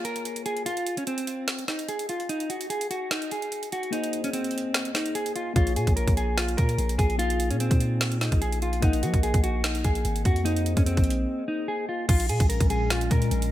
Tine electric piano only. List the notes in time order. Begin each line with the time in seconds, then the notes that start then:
Already playing: A#3 F4 G#4 C#5
3.91 A#3 G#4 C5
3.95 D#5
5.54 A#3 F4 G#4
5.58 C#5
7.17 A#3 D#4 F4
7.21 G#4
8.80 A#3 A#4 D#5
8.84 F#5
10.44 A#3 G#4 C5
10.48 D#5